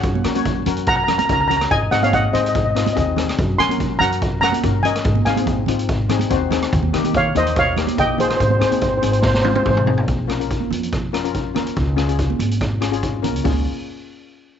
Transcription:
Already playing: C#5 F#5
0.03 F#2, kick, closed hi-hat
0.15 high conga
0.24 C#4 F#4 A#4, cross-stick, closed hi-hat
0.35 C#4 F#4 C#5, closed hi-hat, high conga
0.45 kick, closed hi-hat, low conga
0.66 F#2 C#4 F#4 A#4, closed hi-hat, low conga
0.77 closed hi-hat
0.86 F#5 A#5, kick, closed hi-hat
1.04 A#5
1.08 C#4 F#4 A#4 A#5, cross-stick, closed hi-hat, low conga
1.18 A#5, closed hi-hat, high conga
1.25 C#2 C#4 A#5, kick, closed hi-hat
1.30 F#4 A#4 A#5
1.41 A#5
1.48 C#4 F#4 A#4 A#5, closed hi-hat, low conga
1.57 A#5
1.61 cross-stick, closed hi-hat
1.71 G#2 D#5 G#5, kick, closed hi-hat
1.91 G#2 C4 D#4 G#4 D#5 F#5, cross-stick, closed hi-hat
2.03 C4 D#4 G#4 C#5 F5, closed hi-hat, high conga
2.13 D#5 F#5, kick, closed hi-hat, low conga
2.33 G#2 C4 D#4 G#4 C5 D#5, closed hi-hat
2.41 D#5
2.46 D#5, closed hi-hat
2.55 D#5, kick, closed hi-hat, high conga
2.65 D#5
2.71 D#5
2.75 C4 D#4 F4 D#5, cross-stick, closed hi-hat
2.85 D#5, closed hi-hat, high conga
2.93 D#2 C4 D#4 G#4 D#5, kick, closed hi-hat
3.01 D#5
3.16 C4 D#4 G#4, cross-stick, closed hi-hat, low conga
3.29 cross-stick, closed hi-hat
3.39 F#2, kick, closed hi-hat
3.58 F#3 C#4 F#4 A#4 G#5 C6, cross-stick, closed hi-hat
3.69 C#4 F#4 A#4, closed hi-hat, high conga
3.78 kick, closed hi-hat, low conga
3.99 F#2 C#4 F#4 A#4 F#5 A#5, closed hi-hat, low conga
4.12 closed hi-hat
4.22 kick, closed hi-hat
4.41 C#4 F#4 A#4 F#5 A#5, cross-stick, closed hi-hat, low conga
4.52 closed hi-hat, high conga
4.63 G2 C#4 F#4 A#4, kick, closed hi-hat
4.83 C#4 F#4 A#4 D#5 G#5, closed hi-hat, low conga
4.96 cross-stick, closed hi-hat
5.04 G#2, kick, closed hi-hat
5.15 high conga
5.25 G#2 C4 D#4 G#4 F5 G#5, cross-stick, closed hi-hat
5.36 C4 D#4 G#4, closed hi-hat, high conga
5.46 kick, closed hi-hat, low conga
5.66 G#2 C4 D#4 F4, closed hi-hat, low conga
5.79 closed hi-hat
5.89 kick, closed hi-hat
6.09 C4 D#4 G#4, cross-stick, closed hi-hat, low conga
6.19 closed hi-hat, high conga
6.30 D#2 C4 D#4 F#4 C5, kick, closed hi-hat
6.51 C4 D#4 G#4, cross-stick, closed hi-hat, low conga
6.62 cross-stick, closed hi-hat
6.73 D#2, kick, closed hi-hat
6.83 high conga
6.93 D#3 A#3 D#4 G4, cross-stick, closed hi-hat
7.04 A#3 D#4 G4, closed hi-hat, high conga
7.13 C#5 F5, kick, closed hi-hat, low conga
7.35 D#2 A#3 D#4 G4 C5 D#5, closed hi-hat, low conga
7.47 closed hi-hat
7.56 C#5 F5, kick, closed hi-hat
7.76 A#3 D#4 G4, cross-stick, closed hi-hat, low conga
7.87 closed hi-hat, high conga
7.97 A#1 A#3 D#4 G4 D#5 G5, kick, closed hi-hat
8.18 A#3 D#4 F4 G#4 C5, closed hi-hat, low conga
8.28 C5, cross-stick, closed hi-hat
8.37 G#1 C5, kick, closed hi-hat
8.43 C5
8.50 C5, high conga
8.60 G#2 C4 D#4 G#4 C5, cross-stick, closed hi-hat
8.65 C5
8.71 C4 D#4 G#4 C5, closed hi-hat, high conga
8.81 C5, kick, closed hi-hat
8.89 C5
8.97 C5
9.02 G#1 C4 D#4 G#4, closed hi-hat
9.12 C5, closed hi-hat
9.20 C5, kick, snare
9.26 C5
9.34 C5, snare
9.42 C4 D#4 F4 C5, high tom, low conga
9.49 C5
9.55 C5, high tom, high conga
9.63 G#1 C4 D#4 G#4 C5, kick, mid tom
9.70 C5
9.77 mid tom
9.86 C4 D#4 G#4, floor tom, low conga
9.97 floor tom
10.08 A#1, kick, closed hi-hat
10.27 C#4 F4 A#4, cross-stick, closed hi-hat
10.39 C#4 F4 A#4, closed hi-hat
10.51 kick, closed hi-hat
10.60 high conga
10.71 F2, closed hi-hat, high conga, low conga
10.83 closed hi-hat
10.93 kick, cross-stick, closed hi-hat
11.13 C#4 F4 A#4, cross-stick, closed hi-hat
11.24 C#4 F4 A#4, closed hi-hat
11.34 kick, closed hi-hat
11.54 C#4 F4 A#4, cross-stick, closed hi-hat, high conga, low conga
11.66 C2, closed hi-hat
11.76 C#2, kick, closed hi-hat
11.96 C#4 F4 G#4, cross-stick, closed hi-hat
12.08 C#4 F4 G#4, closed hi-hat
12.19 kick, closed hi-hat
12.30 high conga
12.39 G#1, closed hi-hat, high conga
12.51 closed hi-hat
12.61 kick, cross-stick, closed hi-hat
12.81 C#4 F4 G#4, cross-stick, closed hi-hat
12.91 C#4 F4 G#4, closed hi-hat
13.03 kick, closed hi-hat
13.22 C#4 F4 A#4, closed hi-hat, high conga, low conga
13.34 C#2, closed hi-hat
13.44 C#2 C#4 F4 G#4, kick, open hi-hat, high conga

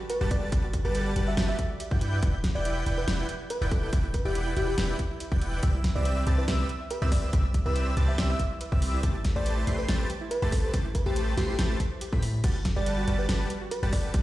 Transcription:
Already playing: impact
0.10 F#4 B4, closed hi-hat
0.21 G1 G3 F#4 G4 B4 F#5 A5 A6
0.31 A4 D5, kick, closed hi-hat
0.42 D5
0.52 G1 G3 G4 B4 F#5 A5 A6, kick, closed hi-hat
0.64 F#4
0.73 F#4, kick, closed hi-hat
0.85 G1 G3 F#4 G4 B4 F#5 A5 A6
0.95 A4, closed hi-hat
1.06 D5
1.16 G1 G3 G4 B4 F#5 A5 A6, closed hi-hat
1.27 F#4 E5
1.37 G1 G3 F#4 G4 B4 F#5 A5 A6, snare, closed hi-hat
1.49 F#4 E5
1.59 A4, kick, closed hi-hat
1.70 D5
1.80 G4, closed hi-hat
1.91 G2 E4 F#4 B4 D5 F#5 G5 G6, kick
2.01 E4, closed hi-hat
2.13 E4
2.22 E1 E4 B4 D5 F#5 G5 G6, kick, closed hi-hat
2.34 E5
2.44 G4, kick, snare, closed hi-hat
2.55 E1 E4 B4 D5 F#5 G5 G6
2.65 E4, closed hi-hat
2.76 E4
2.86 E1 E4 B4 D5 F#5 G5 G6, closed hi-hat
2.98 B4 E5
3.08 E1 E4 G4 B4 D5 F#5 G5 G6, snare, closed hi-hat
3.19 E4
3.29 E4, closed hi-hat
3.40 E4
3.50 B4, closed hi-hat
3.61 E1 E4 B4 D5 E5 F#5 G5 G6
3.71 G4 A4, kick, closed hi-hat
3.83 E4 A4
3.93 E1 E4 B4 D5 F#5 G5 G6, kick, closed hi-hat
4.04 E4
4.14 B4, kick, closed hi-hat
4.25 E1 E4 G4 B4 D5 E5 F#5 G5 G6
4.35 G4, closed hi-hat
4.46 E4
4.57 E1 E4 G4 B4 D5 F#5 G5 G6, closed hi-hat
4.68 E4 G4
4.78 E1 E4 B4 D5 F#5 G5 G6, snare, closed hi-hat
4.89 E5
4.99 G4, kick, closed hi-hat
5.10 E4
5.20 E4, closed hi-hat
5.32 E1 E4 B4 D5 F#5 G5 G6, kick
5.42 B4, closed hi-hat
5.53 E5
5.63 C2 C4 G4 B4 D5 E5 E6, kick, closed hi-hat
5.74 E4
5.84 E4, kick, snare, closed hi-hat
5.95 C2 C4 E4 G4 B4 D5 E5 E6
6.05 B4, closed hi-hat
6.17 E5
6.27 C2 C4 G4 B4 D5 A5 A6, closed hi-hat
6.38 E4 B4
6.48 C2 C4 E4 G4 B4 D5 E5 E6, snare, closed hi-hat
6.59 E4
6.69 B4, closed hi-hat
6.81 E5
6.91 G4 B4, closed hi-hat
7.02 C2 C4 E4 G4 B4 D5 E5 E6
7.12 E4 D5, kick, open hi-hat
7.23 E4
7.33 C2 C4 G4 B4 D5 E5 E6, kick, closed hi-hat
7.44 E5
7.54 G4, kick, closed hi-hat
7.66 C2 C4 E4 G4 B4 D5 E5 E6
7.76 E4, closed hi-hat
7.87 E4
7.97 C2 C4 G4 B4 D5 A5 A6, closed hi-hat
8.08 E5
8.18 C2 C4 G4 B4 D5 E5 E6, snare, closed hi-hat
8.29 E4 E5
8.39 E4, kick, closed hi-hat
8.51 E4
8.61 B4, closed hi-hat
8.72 C2 C4 G4 B4 D5 E5 E6, kick
8.82 G4, open hi-hat
8.93 E4
9.03 A1 A3 E4 G4 B4 C5 A5 A6, kick, closed hi-hat
9.15 E4
9.25 A4, kick, snare, closed hi-hat
9.36 A1 A3 G4 B4 C5 D5 A5 A6
9.46 G4, closed hi-hat
9.57 E4
9.67 A1 A3 E4 G4 B4 C5 C6 C7, closed hi-hat
9.78 E4 B4
9.88 A1 A3 G4 A4 B4 C5 A5 A6, snare, closed hi-hat
10.00 C5
10.10 G4, closed hi-hat
10.21 E4
10.31 E4 B4, closed hi-hat
10.42 A1 A3 E4 G4 B4 C5 A5 A6
10.52 A4, kick, open hi-hat
10.63 A4 C5
10.74 A1 A3 G4 B4 C5 A5 A6, kick, closed hi-hat
10.85 E4
10.95 E4 B4, kick, closed hi-hat
11.06 A1 A3 E4 G4 B4 C5 A5 A6
11.16 A4, closed hi-hat
11.27 C5
11.37 A1 A3 G4 B4 C5 C6 C7, snare, closed hi-hat
11.49 E4 G4
11.59 A1 A3 E4 G4 B4 C5 A5 A6, snare, closed hi-hat
11.70 E4
11.80 A4, kick, closed hi-hat
11.91 C5
12.01 G4, closed hi-hat
12.12 A2 A3 E4 G4 B4 C5 B5 B6, kick
12.22 E4, open hi-hat
12.34 E4
12.44 G1 G3 F#4 G4 B4 F#5 A5 A6, kick, closed hi-hat, crash
12.55 F#4
12.65 A4, kick, snare, closed hi-hat
12.76 G1 G3 G4 B4 D5 F#5 A5 A6
12.86 G4, closed hi-hat
12.97 F#4
13.08 G1 G3 F#4 G4 B4 F#5 A5 A6, closed hi-hat
13.19 F#4 B4
13.29 G1 G3 G4 A4 B4 F#5 A5 A6, snare, closed hi-hat
13.40 D5
13.50 G4, closed hi-hat
13.61 F#4
13.71 F#4 B4, closed hi-hat
13.83 G1 G3 F#4 G4 B4 F#5 A5 A6
13.93 A4 D5, kick, open hi-hat
14.04 D5
14.14 G1 G3 G4 B4 F#5 A5 A6, kick, closed hi-hat

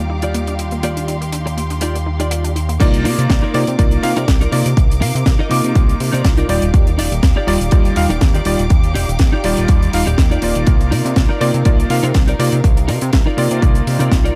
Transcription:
Already playing: D#2 G3 D#4 F4 G4 D5 F5 D6
0.09 D#4, muted clean electric guitar stroke
0.22 D#4 F4 G4 D5, closed hi-hat
0.34 A#3, closed hi-hat
0.47 D4, closed hi-hat
0.59 D#4 C6, closed hi-hat
0.71 A#3, closed hi-hat
0.83 A#3 F4 G4 D5, closed hi-hat
0.97 D4, closed hi-hat
1.08 D#4, closed hi-hat
1.21 A#3, closed hi-hat
1.32 D4, closed hi-hat
1.46 D#4, muted clean electric guitar stroke, closed hi-hat
1.57 A#3, muted clean electric guitar stroke, closed hi-hat
1.70 D4, closed hi-hat
1.81 D#4 F4 G4 D5, closed hi-hat
1.95 A#3, closed hi-hat
2.06 D#4, muted clean electric guitar stroke
2.20 D#4 F4 G4 D5, closed hi-hat
2.31 A#3, closed hi-hat
2.44 D4, closed hi-hat
2.56 D#4, closed hi-hat
2.69 A#3, closed hi-hat
2.80 C2 A#3 D#4 F4 A#4 D5 F5 D6, kick, closed hi-hat, crash
2.94 closed hi-hat
3.04 C3 D#4 F4 A#4 D5, open hi-hat
3.18 C3, closed hi-hat
3.29 C2, muted clean electric guitar stroke, kick, snare, closed hi-hat
3.42 D#4 F4 A#4 D5
3.54 C3 A#3 D#4 F4 D5, open hi-hat
3.67 C3, closed hi-hat
3.78 C2 A#3 D#4 F4 D5, kick, closed hi-hat
3.91 closed hi-hat
4.02 C3 A#3 D#4 F4 F5, open hi-hat
4.16 C3 D#4 F4 A#4 D5, closed hi-hat
4.28 C2, kick, snare, closed hi-hat
4.41 D#4 F4 A#4 D5, closed hi-hat
4.51 C3 A#3 D#4 F4 D5, open hi-hat
4.66 C3, closed hi-hat
4.77 C2, kick, closed hi-hat
4.91 closed hi-hat
5.01 C3 D#4 F4 A#4 F5, open hi-hat
5.15 C3, closed hi-hat
5.26 C2, muted clean electric guitar stroke, kick, snare, closed hi-hat
5.39 D#4 F4 A#4 D#5
5.49 C3 A#3 D#4 F4 D6, open hi-hat
5.64 C3, closed hi-hat
5.75 C2, kick, closed hi-hat
5.89 closed hi-hat
6.00 C3, open hi-hat
6.13 C3 D#4 F4 A#4 D5, closed hi-hat
6.24 C2, kick, snare, closed hi-hat
6.37 D#4 F4 A#4 D5, closed hi-hat
6.48 D#1 G3 D#4 F4 G4 D5 D6, open hi-hat
6.62 D#1, closed hi-hat
6.74 D#2, kick, closed hi-hat
6.87 closed hi-hat
6.98 D#1 D#4 F4 G4 D5, open hi-hat
7.11 D#1, closed hi-hat
7.23 D#2, muted clean electric guitar stroke, kick, snare, closed hi-hat
7.36 D#4 F4 G4 D5
7.47 D#1 G3 D#4 F4 D5, open hi-hat
7.61 D#1, closed hi-hat
7.71 D#2 G3 D#4 F4 D5, kick, closed hi-hat
7.85 closed hi-hat
7.96 D#1 G3 D#4 F4 F5, open hi-hat
8.09 D#1 D#4 F4 G4 D5, closed hi-hat
8.21 D#2, kick, snare, closed hi-hat
8.34 D#4 F4 G4 D5, closed hi-hat
8.45 D#1 G3 D#4 F4 D5, open hi-hat
8.59 D#1, closed hi-hat
8.70 D#2, kick, closed hi-hat
8.84 closed hi-hat
8.94 D#1 D#4 F4 G4 D5, open hi-hat
9.08 D#1, closed hi-hat
9.19 D#2, muted clean electric guitar stroke, kick, snare, closed hi-hat
9.33 D#4 F4 G4 D5
9.44 D#1 G3 D#4 F4 D5, open hi-hat
9.57 D#1, closed hi-hat
9.68 D#2, kick, closed hi-hat
9.83 closed hi-hat
9.93 D#1 G3 D#4 F4 F5, open hi-hat
10.06 D#1 D#4 F4 G4 D5, closed hi-hat
10.18 D#2, kick, snare, closed hi-hat
10.31 D#4 F4 G4 D5, closed hi-hat
10.42 D#1 A#3 D#4 F4 D5, open hi-hat
10.55 D#1, closed hi-hat
10.67 C2 A#4, kick, closed hi-hat
10.81 closed hi-hat
10.91 C3 D#4 F4 A#4 D5, open hi-hat
11.05 C3, closed hi-hat
11.16 C2, muted clean electric guitar stroke, kick, snare, closed hi-hat
11.29 D#4 F4 A#4 D5
11.40 C3 A#3 D#4 F4 D5, open hi-hat
11.54 C3, closed hi-hat
11.65 C2 A#3 D#4 F4 D5, kick, closed hi-hat
11.80 closed hi-hat
11.90 C3 A#3 D#4 F4 F5, open hi-hat
12.03 C3 D#4 F4 A#4 F5, closed hi-hat
12.14 C2, kick, snare, closed hi-hat
12.27 D#4 F4 A#4 D5, closed hi-hat
12.39 C3 A#3 D#4 F4 D5, open hi-hat
12.52 C3, closed hi-hat
12.64 C2, kick, closed hi-hat
12.77 closed hi-hat
12.88 C3 D#4 F4 A#4 D5, open hi-hat
13.01 C3, closed hi-hat
13.13 C2, muted clean electric guitar stroke, kick, snare, closed hi-hat
13.26 D#4 F4 A#4 D5
13.37 C3 A#3 D#4 F4 D5, open hi-hat
13.51 C3, closed hi-hat
13.62 C2, kick, closed hi-hat
13.75 closed hi-hat
13.87 C3, open hi-hat
13.99 C3 D#4 F4 A#4 D5, closed hi-hat
14.12 C2, kick, snare, closed hi-hat
14.24 D#4 F4 A#4 D5, closed hi-hat

